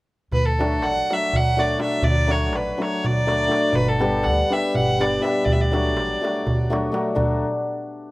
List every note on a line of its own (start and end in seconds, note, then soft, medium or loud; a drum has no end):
0.32 0.82 D2 medium
0.32 0.47 B4 medium
0.32 darbuka dum medium
0.45 0.85 A4 medium
0.59 1.09 F#3 medium
0.59 0.79 A3 medium
0.59 0.79 D4 medium
0.59 0.80 F#4 medium
0.59 darbuka tek medium
0.82 0.99 A1 medium
0.82 1.15 F#5 loud
0.82 darbuka tek medium
1.10 1.55 F#3 medium
1.10 1.29 A3 soft
1.10 1.30 D4 soft
1.10 1.30 F#4 medium
1.10 1.37 E5 loud
1.10 darbuka tek soft
1.22 darbuka tek soft
1.33 1.75 D2 medium
1.33 1.61 F#5 loud
1.33 darbuka dum medium
1.46 darbuka tek soft
1.57 1.77 F#3 medium
1.57 1.76 A3 medium
1.57 1.77 D4 medium
1.57 1.77 F#4 medium
1.57 1.81 D5 medium
1.57 darbuka tek medium
1.78 2.26 F#3 soft
1.78 1.98 A3 soft
1.78 1.98 D4 soft
1.78 1.99 F#4 medium
1.78 2.05 E5 medium
1.78 darbuka tek medium
2.02 2.53 D2 medium
2.02 2.32 D5 loud
2.02 darbuka dum medium
2.27 2.76 F#3 medium
2.27 2.48 A3 medium
2.27 2.48 D4 medium
2.27 2.49 F#4 medium
2.27 2.57 C#5 medium
2.27 darbuka tek medium
2.53 2.70 A1 medium
2.53 2.84 B4 medium
2.53 darbuka tek medium
2.77 3.25 F#3 medium
2.77 2.99 A3 soft
2.77 2.99 D4 soft
2.77 2.99 F#4 medium
2.82 3.07 C#5 medium
2.82 darbuka tek medium
2.93 darbuka tek soft
3.04 3.46 D2 medium
3.04 3.77 D5 loud
3.04 darbuka dum medium
3.17 darbuka tek soft
3.26 3.46 F#3 medium
3.26 3.46 A3 medium
3.26 3.47 D4 medium
3.26 3.47 F#4 medium
3.26 darbuka tek medium
3.48 3.79 F#3 medium
3.48 3.68 A3 soft
3.48 3.68 D4 soft
3.48 3.69 F#4 soft
3.48 darbuka tek medium
3.73 4.26 G1 medium
3.73 3.90 B4 loud
3.73 darbuka dum medium
3.88 4.25 A4 medium
3.99 4.48 G3 medium
3.99 4.20 B3 medium
3.99 4.20 D4 medium
3.99 4.20 G4 medium
3.99 darbuka tek medium
4.23 4.42 D2 medium
4.23 4.54 F#5 medium
4.23 darbuka tek medium
4.49 4.97 G3 soft
4.49 4.70 B3 soft
4.49 4.70 D4 soft
4.49 4.71 G4 medium
4.49 4.76 E5 loud
4.49 darbuka tek medium
4.75 5.17 G1 medium
4.75 5.03 F#5 medium
4.75 darbuka dum medium
4.87 darbuka tek soft
4.99 5.19 G3 medium
4.99 5.18 B3 medium
4.99 5.19 D4 medium
4.99 5.19 G4 medium
4.99 5.24 D5 medium
4.99 darbuka tek medium
5.21 5.50 G3 soft
5.21 5.40 B3 soft
5.21 5.41 D4 soft
5.21 5.41 G4 medium
5.21 5.46 E5 medium
5.21 darbuka tek medium
5.45 5.97 D2 medium
5.45 5.54 D5 medium
5.45 darbuka dum medium
5.52 5.62 E5 medium
5.60 6.72 D5 medium
5.60 darbuka tek soft
5.72 6.20 F#3 medium
5.72 5.92 A3 medium
5.72 5.92 D4 medium
5.72 5.92 F#4 medium
5.72 darbuka tek medium
5.97 6.13 A1 medium
5.97 darbuka tek medium
6.11 darbuka tek soft
6.21 6.69 F#3 medium
6.21 6.42 A3 medium
6.21 6.42 D4 soft
6.21 6.43 F#4 medium
6.21 darbuka tek medium
6.36 darbuka tek soft
6.47 6.88 D2 medium
6.47 darbuka dum medium
6.70 6.90 F#3 medium
6.70 6.89 A3 medium
6.70 6.90 D4 medium
6.70 6.90 F#4 medium
6.70 darbuka tek medium
6.84 darbuka tek soft
6.92 7.15 F#3 medium
6.92 7.11 A3 medium
6.92 7.12 D4 medium
6.92 7.12 F#4 medium
6.92 darbuka tek medium
7.05 darbuka tek soft
7.15 7.42 D2 medium
7.15 7.42 F#3 medium
7.15 7.41 A3 medium
7.15 7.42 D4 medium
7.15 7.42 F#4 medium
7.15 darbuka dum medium